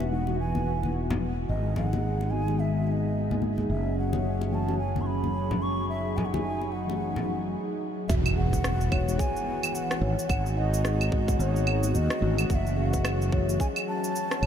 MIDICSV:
0, 0, Header, 1, 8, 480
1, 0, Start_track
1, 0, Tempo, 550459
1, 1300, Time_signature, 4, 2, 24, 8
1, 12614, End_track
2, 0, Start_track
2, 0, Title_t, "Bansuri"
2, 0, Program_c, 0, 73
2, 0, Note_on_c, 0, 76, 78
2, 94, Note_off_c, 0, 76, 0
2, 99, Note_on_c, 0, 78, 85
2, 323, Note_off_c, 0, 78, 0
2, 350, Note_on_c, 0, 80, 82
2, 792, Note_off_c, 0, 80, 0
2, 1299, Note_on_c, 0, 75, 92
2, 1523, Note_off_c, 0, 75, 0
2, 1544, Note_on_c, 0, 78, 85
2, 2012, Note_on_c, 0, 80, 99
2, 2026, Note_off_c, 0, 78, 0
2, 2264, Note_on_c, 0, 76, 86
2, 2277, Note_off_c, 0, 80, 0
2, 2501, Note_off_c, 0, 76, 0
2, 2501, Note_on_c, 0, 76, 72
2, 2543, Note_on_c, 0, 75, 78
2, 2551, Note_off_c, 0, 76, 0
2, 2981, Note_off_c, 0, 75, 0
2, 3237, Note_on_c, 0, 76, 82
2, 3452, Note_off_c, 0, 76, 0
2, 3476, Note_on_c, 0, 78, 83
2, 3957, Note_on_c, 0, 81, 92
2, 3970, Note_off_c, 0, 78, 0
2, 4171, Note_off_c, 0, 81, 0
2, 4177, Note_on_c, 0, 80, 90
2, 4368, Note_on_c, 0, 85, 69
2, 4381, Note_off_c, 0, 80, 0
2, 4417, Note_on_c, 0, 83, 95
2, 4430, Note_off_c, 0, 85, 0
2, 4903, Note_on_c, 0, 85, 103
2, 4916, Note_off_c, 0, 83, 0
2, 5132, Note_off_c, 0, 85, 0
2, 5137, Note_on_c, 0, 76, 103
2, 5377, Note_on_c, 0, 80, 82
2, 5390, Note_off_c, 0, 76, 0
2, 5454, Note_on_c, 0, 78, 73
2, 5467, Note_off_c, 0, 80, 0
2, 5527, Note_on_c, 0, 80, 98
2, 5540, Note_off_c, 0, 78, 0
2, 5861, Note_on_c, 0, 78, 84
2, 5874, Note_off_c, 0, 80, 0
2, 6580, Note_off_c, 0, 78, 0
2, 7048, Note_on_c, 0, 76, 100
2, 7103, Note_off_c, 0, 76, 0
2, 7300, Note_on_c, 0, 78, 111
2, 8017, Note_on_c, 0, 80, 108
2, 8030, Note_off_c, 0, 78, 0
2, 8495, Note_on_c, 0, 78, 108
2, 8508, Note_off_c, 0, 80, 0
2, 8878, Note_off_c, 0, 78, 0
2, 8977, Note_on_c, 0, 78, 108
2, 9220, Note_on_c, 0, 75, 101
2, 9233, Note_off_c, 0, 78, 0
2, 9951, Note_on_c, 0, 73, 91
2, 9964, Note_off_c, 0, 75, 0
2, 10415, Note_off_c, 0, 73, 0
2, 10421, Note_on_c, 0, 75, 89
2, 10775, Note_off_c, 0, 75, 0
2, 10904, Note_on_c, 0, 78, 96
2, 10945, Note_on_c, 0, 76, 105
2, 10954, Note_off_c, 0, 78, 0
2, 11133, Note_on_c, 0, 78, 90
2, 11146, Note_off_c, 0, 76, 0
2, 11622, Note_off_c, 0, 78, 0
2, 11862, Note_on_c, 0, 80, 104
2, 11916, Note_off_c, 0, 80, 0
2, 12105, Note_on_c, 0, 81, 122
2, 12614, Note_off_c, 0, 81, 0
2, 12614, End_track
3, 0, Start_track
3, 0, Title_t, "Steel tongue drum"
3, 0, Program_c, 1, 114
3, 7060, Note_on_c, 1, 66, 80
3, 7187, Note_off_c, 1, 66, 0
3, 7196, Note_on_c, 1, 66, 70
3, 7255, Note_off_c, 1, 66, 0
3, 7296, Note_on_c, 1, 68, 76
3, 7425, Note_off_c, 1, 68, 0
3, 7437, Note_on_c, 1, 71, 75
3, 7495, Note_off_c, 1, 71, 0
3, 7774, Note_on_c, 1, 73, 104
3, 8007, Note_off_c, 1, 73, 0
3, 8013, Note_on_c, 1, 68, 82
3, 8151, Note_off_c, 1, 68, 0
3, 8735, Note_on_c, 1, 73, 103
3, 8871, Note_off_c, 1, 73, 0
3, 9215, Note_on_c, 1, 78, 98
3, 9448, Note_off_c, 1, 78, 0
3, 9458, Note_on_c, 1, 68, 99
3, 9593, Note_off_c, 1, 68, 0
3, 9698, Note_on_c, 1, 66, 77
3, 9833, Note_off_c, 1, 66, 0
3, 9836, Note_on_c, 1, 78, 95
3, 10168, Note_off_c, 1, 78, 0
3, 10178, Note_on_c, 1, 78, 101
3, 10306, Note_off_c, 1, 78, 0
3, 10323, Note_on_c, 1, 66, 77
3, 10648, Note_off_c, 1, 66, 0
3, 10658, Note_on_c, 1, 66, 79
3, 10793, Note_off_c, 1, 66, 0
3, 10901, Note_on_c, 1, 66, 86
3, 11027, Note_off_c, 1, 66, 0
3, 11038, Note_on_c, 1, 66, 77
3, 11096, Note_off_c, 1, 66, 0
3, 11135, Note_on_c, 1, 68, 78
3, 11264, Note_off_c, 1, 68, 0
3, 11278, Note_on_c, 1, 71, 78
3, 11336, Note_off_c, 1, 71, 0
3, 11618, Note_on_c, 1, 73, 105
3, 11849, Note_off_c, 1, 73, 0
3, 11858, Note_on_c, 1, 68, 85
3, 11993, Note_off_c, 1, 68, 0
3, 12574, Note_on_c, 1, 73, 104
3, 12614, Note_off_c, 1, 73, 0
3, 12614, End_track
4, 0, Start_track
4, 0, Title_t, "Analog synth pad"
4, 0, Program_c, 2, 89
4, 0, Note_on_c, 2, 52, 71
4, 0, Note_on_c, 2, 59, 70
4, 0, Note_on_c, 2, 66, 83
4, 1265, Note_off_c, 2, 59, 0
4, 1275, Note_off_c, 2, 52, 0
4, 1276, Note_off_c, 2, 66, 0
4, 1292, Note_on_c, 2, 68, 81
4, 1293, Note_on_c, 2, 56, 77
4, 1295, Note_on_c, 2, 63, 70
4, 3197, Note_off_c, 2, 56, 0
4, 3198, Note_off_c, 2, 63, 0
4, 3215, Note_on_c, 2, 54, 71
4, 3222, Note_on_c, 2, 61, 74
4, 5122, Note_off_c, 2, 61, 0
4, 5143, Note_on_c, 2, 63, 69
4, 7021, Note_off_c, 2, 68, 0
4, 7023, Note_off_c, 2, 54, 0
4, 7042, Note_off_c, 2, 63, 0
4, 7056, Note_on_c, 2, 59, 77
4, 7057, Note_on_c, 2, 66, 94
4, 7058, Note_on_c, 2, 52, 78
4, 8959, Note_off_c, 2, 59, 0
4, 8960, Note_off_c, 2, 52, 0
4, 8960, Note_off_c, 2, 66, 0
4, 8973, Note_on_c, 2, 63, 74
4, 8975, Note_on_c, 2, 56, 78
4, 8979, Note_on_c, 2, 66, 88
4, 10877, Note_off_c, 2, 63, 0
4, 10879, Note_off_c, 2, 56, 0
4, 10894, Note_on_c, 2, 61, 75
4, 10895, Note_on_c, 2, 54, 81
4, 12614, Note_off_c, 2, 54, 0
4, 12614, Note_off_c, 2, 61, 0
4, 12614, Note_off_c, 2, 66, 0
4, 12614, End_track
5, 0, Start_track
5, 0, Title_t, "Tine electric piano"
5, 0, Program_c, 3, 4
5, 90, Note_on_c, 3, 52, 77
5, 95, Note_on_c, 3, 56, 73
5, 103, Note_on_c, 3, 63, 73
5, 110, Note_on_c, 3, 66, 91
5, 202, Note_off_c, 3, 52, 0
5, 205, Note_off_c, 3, 56, 0
5, 209, Note_off_c, 3, 63, 0
5, 212, Note_off_c, 3, 66, 0
5, 228, Note_on_c, 3, 52, 85
5, 238, Note_on_c, 3, 56, 83
5, 242, Note_on_c, 3, 63, 83
5, 248, Note_on_c, 3, 66, 95
5, 319, Note_off_c, 3, 52, 0
5, 324, Note_off_c, 3, 56, 0
5, 326, Note_off_c, 3, 63, 0
5, 329, Note_off_c, 3, 66, 0
5, 2009, Note_on_c, 3, 51, 71
5, 2016, Note_on_c, 3, 56, 67
5, 2022, Note_on_c, 3, 59, 68
5, 2030, Note_on_c, 3, 66, 85
5, 2134, Note_off_c, 3, 51, 0
5, 2138, Note_off_c, 3, 56, 0
5, 2141, Note_off_c, 3, 59, 0
5, 2145, Note_off_c, 3, 66, 0
5, 2145, Note_on_c, 3, 51, 69
5, 2157, Note_on_c, 3, 56, 68
5, 2170, Note_on_c, 3, 59, 64
5, 2179, Note_on_c, 3, 66, 74
5, 3200, Note_off_c, 3, 51, 0
5, 3206, Note_off_c, 3, 56, 0
5, 3212, Note_off_c, 3, 59, 0
5, 3217, Note_off_c, 3, 66, 0
5, 3932, Note_on_c, 3, 52, 89
5, 3938, Note_on_c, 3, 57, 76
5, 3946, Note_on_c, 3, 61, 75
5, 3949, Note_on_c, 3, 66, 93
5, 4043, Note_off_c, 3, 52, 0
5, 4046, Note_off_c, 3, 57, 0
5, 4050, Note_off_c, 3, 61, 0
5, 4052, Note_off_c, 3, 66, 0
5, 4077, Note_on_c, 3, 52, 91
5, 4081, Note_on_c, 3, 57, 89
5, 4087, Note_on_c, 3, 61, 82
5, 4092, Note_on_c, 3, 66, 110
5, 4163, Note_off_c, 3, 52, 0
5, 4165, Note_off_c, 3, 57, 0
5, 4168, Note_off_c, 3, 61, 0
5, 4171, Note_off_c, 3, 66, 0
5, 5982, Note_on_c, 3, 52, 72
5, 5996, Note_on_c, 3, 57, 64
5, 6006, Note_on_c, 3, 61, 62
5, 6019, Note_on_c, 3, 66, 77
5, 6570, Note_off_c, 3, 52, 0
5, 6577, Note_off_c, 3, 57, 0
5, 6582, Note_off_c, 3, 61, 0
5, 6589, Note_off_c, 3, 66, 0
5, 7771, Note_on_c, 3, 52, 92
5, 7776, Note_on_c, 3, 56, 82
5, 7781, Note_on_c, 3, 63, 78
5, 7789, Note_on_c, 3, 66, 98
5, 7883, Note_off_c, 3, 52, 0
5, 7885, Note_off_c, 3, 56, 0
5, 7888, Note_off_c, 3, 63, 0
5, 7892, Note_off_c, 3, 66, 0
5, 7911, Note_on_c, 3, 52, 103
5, 7916, Note_on_c, 3, 56, 91
5, 7923, Note_on_c, 3, 63, 100
5, 7928, Note_on_c, 3, 66, 115
5, 8001, Note_off_c, 3, 52, 0
5, 8003, Note_off_c, 3, 56, 0
5, 8006, Note_off_c, 3, 63, 0
5, 8009, Note_off_c, 3, 66, 0
5, 9692, Note_on_c, 3, 51, 83
5, 9697, Note_on_c, 3, 56, 77
5, 9704, Note_on_c, 3, 59, 80
5, 9708, Note_on_c, 3, 66, 97
5, 9816, Note_off_c, 3, 51, 0
5, 9818, Note_off_c, 3, 56, 0
5, 9822, Note_off_c, 3, 59, 0
5, 9824, Note_off_c, 3, 66, 0
5, 9829, Note_on_c, 3, 51, 82
5, 9834, Note_on_c, 3, 56, 70
5, 9842, Note_on_c, 3, 59, 68
5, 9846, Note_on_c, 3, 66, 89
5, 10287, Note_off_c, 3, 51, 0
5, 10289, Note_off_c, 3, 56, 0
5, 10293, Note_off_c, 3, 59, 0
5, 10295, Note_off_c, 3, 66, 0
5, 10310, Note_on_c, 3, 51, 84
5, 10314, Note_on_c, 3, 56, 84
5, 10321, Note_on_c, 3, 59, 83
5, 10327, Note_on_c, 3, 66, 98
5, 10399, Note_off_c, 3, 51, 0
5, 10402, Note_off_c, 3, 56, 0
5, 10405, Note_off_c, 3, 59, 0
5, 10408, Note_off_c, 3, 66, 0
5, 10638, Note_on_c, 3, 52, 85
5, 10649, Note_on_c, 3, 57, 81
5, 10660, Note_on_c, 3, 61, 80
5, 10671, Note_on_c, 3, 66, 95
5, 11585, Note_off_c, 3, 52, 0
5, 11591, Note_off_c, 3, 57, 0
5, 11596, Note_off_c, 3, 61, 0
5, 11602, Note_off_c, 3, 66, 0
5, 11606, Note_on_c, 3, 52, 96
5, 11611, Note_on_c, 3, 57, 89
5, 11619, Note_on_c, 3, 61, 87
5, 11621, Note_on_c, 3, 66, 109
5, 11720, Note_off_c, 3, 52, 0
5, 11723, Note_off_c, 3, 57, 0
5, 11727, Note_off_c, 3, 61, 0
5, 11728, Note_off_c, 3, 66, 0
5, 11752, Note_on_c, 3, 52, 104
5, 11757, Note_on_c, 3, 57, 100
5, 11765, Note_on_c, 3, 61, 93
5, 11769, Note_on_c, 3, 66, 116
5, 11841, Note_off_c, 3, 52, 0
5, 11843, Note_off_c, 3, 57, 0
5, 11847, Note_off_c, 3, 61, 0
5, 11849, Note_off_c, 3, 66, 0
5, 12614, End_track
6, 0, Start_track
6, 0, Title_t, "Fretless electric bass"
6, 0, Program_c, 4, 35
6, 0, Note_on_c, 4, 28, 72
6, 1281, Note_off_c, 4, 28, 0
6, 1302, Note_on_c, 4, 32, 76
6, 3201, Note_off_c, 4, 32, 0
6, 3223, Note_on_c, 4, 30, 78
6, 6582, Note_off_c, 4, 30, 0
6, 7058, Note_on_c, 4, 28, 93
6, 7986, Note_off_c, 4, 28, 0
6, 8732, Note_on_c, 4, 32, 93
6, 8848, Note_off_c, 4, 32, 0
6, 8976, Note_on_c, 4, 32, 97
6, 9905, Note_off_c, 4, 32, 0
6, 9933, Note_on_c, 4, 32, 96
6, 10416, Note_on_c, 4, 39, 95
6, 10429, Note_off_c, 4, 32, 0
6, 10530, Note_off_c, 4, 39, 0
6, 10656, Note_on_c, 4, 32, 93
6, 10857, Note_off_c, 4, 32, 0
6, 10900, Note_on_c, 4, 30, 92
6, 11827, Note_off_c, 4, 30, 0
6, 12578, Note_on_c, 4, 33, 90
6, 12614, Note_off_c, 4, 33, 0
6, 12614, End_track
7, 0, Start_track
7, 0, Title_t, "Impact"
7, 0, Program_c, 5, 103
7, 7060, Note_on_c, 5, 60, 78
7, 8980, Note_off_c, 5, 60, 0
7, 12614, End_track
8, 0, Start_track
8, 0, Title_t, "Drums"
8, 3, Note_on_c, 9, 60, 59
8, 90, Note_off_c, 9, 60, 0
8, 236, Note_on_c, 9, 60, 52
8, 323, Note_off_c, 9, 60, 0
8, 480, Note_on_c, 9, 63, 58
8, 567, Note_off_c, 9, 63, 0
8, 727, Note_on_c, 9, 63, 57
8, 814, Note_off_c, 9, 63, 0
8, 963, Note_on_c, 9, 64, 94
8, 1050, Note_off_c, 9, 64, 0
8, 1536, Note_on_c, 9, 64, 73
8, 1623, Note_off_c, 9, 64, 0
8, 1684, Note_on_c, 9, 60, 59
8, 1690, Note_on_c, 9, 63, 58
8, 1771, Note_off_c, 9, 60, 0
8, 1777, Note_off_c, 9, 63, 0
8, 1925, Note_on_c, 9, 60, 55
8, 2012, Note_off_c, 9, 60, 0
8, 2164, Note_on_c, 9, 60, 51
8, 2252, Note_off_c, 9, 60, 0
8, 2888, Note_on_c, 9, 63, 65
8, 2975, Note_off_c, 9, 63, 0
8, 2981, Note_on_c, 9, 63, 54
8, 3068, Note_off_c, 9, 63, 0
8, 3120, Note_on_c, 9, 63, 56
8, 3207, Note_off_c, 9, 63, 0
8, 3601, Note_on_c, 9, 60, 67
8, 3601, Note_on_c, 9, 63, 69
8, 3688, Note_off_c, 9, 60, 0
8, 3688, Note_off_c, 9, 63, 0
8, 3850, Note_on_c, 9, 60, 60
8, 3937, Note_off_c, 9, 60, 0
8, 4085, Note_on_c, 9, 60, 57
8, 4172, Note_off_c, 9, 60, 0
8, 4324, Note_on_c, 9, 63, 64
8, 4411, Note_off_c, 9, 63, 0
8, 4567, Note_on_c, 9, 63, 57
8, 4654, Note_off_c, 9, 63, 0
8, 4804, Note_on_c, 9, 64, 83
8, 4891, Note_off_c, 9, 64, 0
8, 5386, Note_on_c, 9, 64, 77
8, 5473, Note_off_c, 9, 64, 0
8, 5527, Note_on_c, 9, 63, 75
8, 5529, Note_on_c, 9, 60, 64
8, 5614, Note_off_c, 9, 63, 0
8, 5616, Note_off_c, 9, 60, 0
8, 5768, Note_on_c, 9, 60, 57
8, 5856, Note_off_c, 9, 60, 0
8, 6013, Note_on_c, 9, 60, 64
8, 6100, Note_off_c, 9, 60, 0
8, 6246, Note_on_c, 9, 64, 74
8, 6333, Note_off_c, 9, 64, 0
8, 7059, Note_on_c, 9, 36, 124
8, 7062, Note_on_c, 9, 82, 55
8, 7146, Note_off_c, 9, 36, 0
8, 7149, Note_off_c, 9, 82, 0
8, 7200, Note_on_c, 9, 75, 82
8, 7204, Note_on_c, 9, 82, 33
8, 7287, Note_off_c, 9, 75, 0
8, 7291, Note_off_c, 9, 82, 0
8, 7439, Note_on_c, 9, 36, 61
8, 7442, Note_on_c, 9, 82, 66
8, 7526, Note_off_c, 9, 36, 0
8, 7529, Note_off_c, 9, 82, 0
8, 7537, Note_on_c, 9, 37, 86
8, 7541, Note_on_c, 9, 82, 57
8, 7624, Note_off_c, 9, 37, 0
8, 7628, Note_off_c, 9, 82, 0
8, 7680, Note_on_c, 9, 82, 31
8, 7767, Note_off_c, 9, 82, 0
8, 7777, Note_on_c, 9, 36, 107
8, 7778, Note_on_c, 9, 75, 79
8, 7864, Note_off_c, 9, 36, 0
8, 7865, Note_off_c, 9, 75, 0
8, 7922, Note_on_c, 9, 82, 65
8, 8009, Note_off_c, 9, 82, 0
8, 8017, Note_on_c, 9, 36, 99
8, 8022, Note_on_c, 9, 82, 56
8, 8104, Note_off_c, 9, 36, 0
8, 8110, Note_off_c, 9, 82, 0
8, 8165, Note_on_c, 9, 82, 35
8, 8253, Note_off_c, 9, 82, 0
8, 8401, Note_on_c, 9, 75, 84
8, 8405, Note_on_c, 9, 82, 69
8, 8488, Note_off_c, 9, 75, 0
8, 8492, Note_off_c, 9, 82, 0
8, 8501, Note_on_c, 9, 82, 55
8, 8588, Note_off_c, 9, 82, 0
8, 8641, Note_on_c, 9, 37, 78
8, 8644, Note_on_c, 9, 82, 34
8, 8728, Note_off_c, 9, 37, 0
8, 8732, Note_off_c, 9, 82, 0
8, 8885, Note_on_c, 9, 82, 66
8, 8972, Note_off_c, 9, 82, 0
8, 8977, Note_on_c, 9, 36, 123
8, 8979, Note_on_c, 9, 75, 79
8, 8982, Note_on_c, 9, 82, 58
8, 9064, Note_off_c, 9, 36, 0
8, 9066, Note_off_c, 9, 75, 0
8, 9070, Note_off_c, 9, 82, 0
8, 9122, Note_on_c, 9, 82, 33
8, 9209, Note_off_c, 9, 82, 0
8, 9363, Note_on_c, 9, 82, 70
8, 9450, Note_off_c, 9, 82, 0
8, 9458, Note_on_c, 9, 37, 82
8, 9462, Note_on_c, 9, 82, 58
8, 9545, Note_off_c, 9, 37, 0
8, 9549, Note_off_c, 9, 82, 0
8, 9601, Note_on_c, 9, 75, 73
8, 9604, Note_on_c, 9, 82, 35
8, 9688, Note_off_c, 9, 75, 0
8, 9691, Note_off_c, 9, 82, 0
8, 9698, Note_on_c, 9, 36, 114
8, 9785, Note_off_c, 9, 36, 0
8, 9838, Note_on_c, 9, 36, 111
8, 9842, Note_on_c, 9, 82, 72
8, 9926, Note_off_c, 9, 36, 0
8, 9929, Note_off_c, 9, 82, 0
8, 9941, Note_on_c, 9, 82, 57
8, 10029, Note_off_c, 9, 82, 0
8, 10081, Note_on_c, 9, 82, 35
8, 10168, Note_off_c, 9, 82, 0
8, 10176, Note_on_c, 9, 75, 82
8, 10263, Note_off_c, 9, 75, 0
8, 10318, Note_on_c, 9, 82, 73
8, 10405, Note_off_c, 9, 82, 0
8, 10418, Note_on_c, 9, 82, 56
8, 10505, Note_off_c, 9, 82, 0
8, 10555, Note_on_c, 9, 37, 82
8, 10558, Note_on_c, 9, 82, 33
8, 10642, Note_off_c, 9, 37, 0
8, 10645, Note_off_c, 9, 82, 0
8, 10799, Note_on_c, 9, 75, 84
8, 10803, Note_on_c, 9, 82, 68
8, 10886, Note_off_c, 9, 75, 0
8, 10890, Note_off_c, 9, 82, 0
8, 10899, Note_on_c, 9, 36, 123
8, 10901, Note_on_c, 9, 82, 57
8, 10986, Note_off_c, 9, 36, 0
8, 10988, Note_off_c, 9, 82, 0
8, 11044, Note_on_c, 9, 82, 33
8, 11131, Note_off_c, 9, 82, 0
8, 11280, Note_on_c, 9, 36, 64
8, 11280, Note_on_c, 9, 82, 72
8, 11367, Note_off_c, 9, 36, 0
8, 11367, Note_off_c, 9, 82, 0
8, 11376, Note_on_c, 9, 37, 82
8, 11376, Note_on_c, 9, 75, 78
8, 11380, Note_on_c, 9, 82, 61
8, 11463, Note_off_c, 9, 37, 0
8, 11463, Note_off_c, 9, 75, 0
8, 11467, Note_off_c, 9, 82, 0
8, 11525, Note_on_c, 9, 82, 35
8, 11612, Note_off_c, 9, 82, 0
8, 11619, Note_on_c, 9, 36, 107
8, 11706, Note_off_c, 9, 36, 0
8, 11764, Note_on_c, 9, 82, 69
8, 11851, Note_off_c, 9, 82, 0
8, 11858, Note_on_c, 9, 36, 100
8, 11864, Note_on_c, 9, 82, 56
8, 11945, Note_off_c, 9, 36, 0
8, 11952, Note_off_c, 9, 82, 0
8, 12000, Note_on_c, 9, 75, 80
8, 12004, Note_on_c, 9, 82, 37
8, 12088, Note_off_c, 9, 75, 0
8, 12091, Note_off_c, 9, 82, 0
8, 12243, Note_on_c, 9, 82, 73
8, 12331, Note_off_c, 9, 82, 0
8, 12344, Note_on_c, 9, 82, 58
8, 12431, Note_off_c, 9, 82, 0
8, 12482, Note_on_c, 9, 37, 78
8, 12485, Note_on_c, 9, 82, 35
8, 12569, Note_off_c, 9, 37, 0
8, 12572, Note_off_c, 9, 82, 0
8, 12581, Note_on_c, 9, 75, 69
8, 12614, Note_off_c, 9, 75, 0
8, 12614, End_track
0, 0, End_of_file